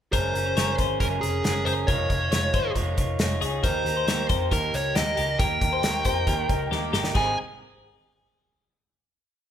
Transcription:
0.11 F#1 F#3 G#3 C#4 G#4 A#4 C5, kick, closed hi-hat
0.34 F#1 C#4 G#4 A#4, closed hi-hat
0.46 C5
0.55 F#1 G#3 C#4 G#4 A#4 C#5, snare, closed hi-hat
0.77 G#1 C#4 G#4 A#4 C5, kick, closed hi-hat
0.99 F#1 F#3 G#3 C#4 G#4 A#4, kick, closed hi-hat
1.20 F1 C#4 G#4 A#4, closed hi-hat
1.43 F#1 G#3 C#4 G#4 A#4, snare, closed hi-hat
1.65 F#1 C#4 G#4 A#4 C5, closed hi-hat
1.87 F1 F3 G#3 D#4 F4 A#4 C#5, kick, closed hi-hat
2.09 F1 D#4 F4 C#5, kick, closed hi-hat
2.21 C5
2.31 F1 G#3 D#4 F4 C#5, snare, closed hi-hat
2.53 G1 D#4 F4 C5 C#5, kick, closed hi-hat
2.75 F1 F3 G#3 D#4 F4 A#4 C#5, kick, closed hi-hat
2.97 F1 D#4 F4 C#5, kick, closed hi-hat
3.19 F1 G#3 D#4 F4 G#4 C#5, snare, closed hi-hat
3.41 C#2 D#4 F4 G#4 C#5, closed hi-hat
3.63 D#2 D#3 A#3 D#4 G4 A#4 C5, kick, closed hi-hat
3.85 D#2 D#4 G4 A#4, closed hi-hat
3.97 C5
4.07 D#2 A#3 D#4 G4 A#4 C#5, snare, closed hi-hat
4.29 F2 D#4 G4 A#4 C5, kick, closed hi-hat
4.51 D#2 D#3 A#3 D#4 G4 A#4, kick, closed hi-hat
4.73 C#2 D#4 G4 A#4 C#5, closed hi-hat
4.94 D#2 A#3 D#4 G4 A#4 D#5, snare, closed hi-hat
5.17 C#2 D#4 G4 A#4, closed hi-hat
5.39 D#2 D#3 A#3 D#4 G4 A#4 G5, kick, closed hi-hat
5.61 D#2 D#4 G4 A#4, kick, closed hi-hat
5.73 C5
5.83 D#2 A#3 D#4 G4 A#4 C#5, snare, closed hi-hat
6.05 F2 D#4 G4 A#4 C5, kick, closed hi-hat
6.27 D#2 D#3 A#3 D#4 G4 A#4, kick, closed hi-hat
6.49 C#2 D#4 G4 A#4, kick, closed hi-hat
6.71 D#2 A#3 D#4 G4 A#4, snare
6.92 G1 D#4 G4 A#4, snare
7.04 snare
7.14 G#1 G#2 D#3 G#3 C4 D#4 G#4 G#5, kick, crash

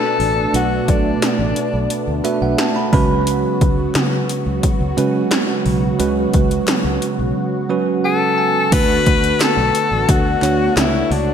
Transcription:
Already playing: A3 B3 D4 F#4 A4 B4
0.20 A1, open hi-hat
0.54 B1 B2 A3 D4 F#4 B4, closed hi-hat
0.88 B1 D4, kick, closed hi-hat
1.22 snare, closed hi-hat
1.39 A1
1.56 closed hi-hat
1.74 B1
1.90 closed hi-hat
2.08 D2
2.24 A3 D4 F#4 B4 E5, closed hi-hat
2.42 B1 F#5
2.58 A5, snare, closed hi-hat
2.76 B5
2.92 C#2 C#3 F#3 G#3 C#4 F#4 B4 B5, kick, open hi-hat
3.27 closed hi-hat
3.61 C#2, kick, closed hi-hat
3.95 C#3, snare, clap, closed hi-hat
4.29 closed hi-hat
4.46 C#2
4.63 kick, closed hi-hat
4.80 C#2
4.97 C#3 G#3 C#4 F#4 B4, closed hi-hat
5.31 snare, clap, closed hi-hat
5.66 B1 C#3, open hi-hat
5.99 C#2 G#3 C#4 F#4 B4, closed hi-hat
6.34 C#2, kick, closed hi-hat
6.51 closed hi-hat
6.68 snare, clap, closed hi-hat
6.85 C#2
7.02 closed hi-hat
7.19 B1
7.69 F#3 C#4 F#4 B4
8.04 A4 F#5
8.38 G#5
8.71 D2 D3 A3 B3 D4 F#4 B4, kick, closed hi-hat, crash
9.06 D2, kick, closed hi-hat
9.24 closed hi-hat
9.40 A4, snare, clap, closed hi-hat, tambourine
9.57 B1
9.75 closed hi-hat
9.91 A1
10.09 D2 F#4, kick, closed hi-hat
10.42 D2 A3 D4 F#4 C#5, clap, closed hi-hat
10.76 C#2 E4, snare, clap, closed hi-hat, tambourine
11.11 C#2 D4, open hi-hat

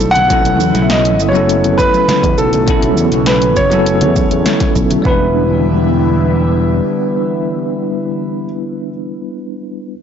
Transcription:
Already playing: A3 E4
0.00 B1 C#3 F#3 B3, shaker
0.11 F#5
0.15 closed hi-hat, low conga, shaker
0.28 F#3 B3 C#4 E4 A4, kick, closed hi-hat, high conga, shaker
0.45 B1, closed hi-hat, shaker
0.60 E2, shaker
0.75 B1, snare, closed hi-hat, high conga, shaker
0.82 E5
0.90 D#5, snare, closed hi-hat, shaker
1.05 closed hi-hat, shaker
1.19 F#1 D#5, shaker
1.29 F#3 C#5
1.33 B3 C#4 E4 A4, high conga, shaker
1.49 closed hi-hat, shaker
1.64 closed hi-hat, low conga, shaker
1.78 B4, kick, high conga, shaker
1.94 muted conga, shaker
2.08 snare, closed hi-hat, low conga, shaker
2.23 E2, kick, closed hi-hat, high conga, shaker
2.38 B1 C#4 A4, shaker
2.53 closed hi-hat, muted conga, low conga, shaker
2.66 F#3 B3 C#4 E4 A4, kick, closed hi-hat, high conga, shaker
2.82 B1, closed hi-hat, muted conga, shaker
2.97 E2, shaker
3.12 B1, closed hi-hat, muted conga, high conga, shaker
3.26 B4, snare, closed hi-hat, shaker
3.42 closed hi-hat, shaker
3.56 F#1 C#5, kick, shaker
3.70 F#3 B3 C#4 E4, closed hi-hat, high conga, shaker
3.74 A4
3.86 closed hi-hat, shaker
4.01 E2, closed hi-hat, low conga, shaker
4.16 kick, high conga, shaker
4.31 E2, closed hi-hat, shaker
4.46 snare, closed hi-hat, low conga, shaker
4.60 kick, snare, closed hi-hat, high conga, shaker
4.76 B1, kick, shaker
4.90 closed hi-hat, low conga, shaker
5.02 E1 D3 E3 G3 B3 D4 E4, kick
5.06 E4 B4

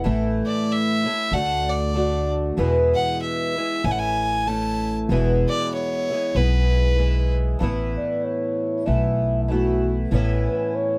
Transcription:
0.04 A1 A2 E3 A3 E4
0.46 D5
0.72 E5
1.04 A3 C#4 E4
1.32 D2 D3 A3 D4 F#4 F#5
1.70 D5
1.94 D3 A3 D4 F#4
2.57 E2 B2 E3 G#3 B3 E4
2.95 F#5
3.22 E5
3.56 E3 G#3 B3 E4
3.84 A1 E3 A3 C#4 E4 G#5
3.91 F#5
3.99 G#5
4.46 E3 A3 C#4 E4 A5
5.09 E1 E2 B2 E3 G#3 B3 E4
5.49 D5
5.74 C#5
6.10 E3 G#3 B3 E4
6.34 B1 E3 G#3 B3 E4 B4
6.96 E3 G#3 B3 E4
7.59 A1 A2 E3 B3
7.63 E4
7.98 D5
8.24 C#5
8.86 B1 E3 A3 B3 E4 E5
9.44 E5
9.48 E3 A3 B3 E4 F#4
10.11 A1 A2 E3 B3 C#4
10.15 E4
10.49 B4
10.77 C#5

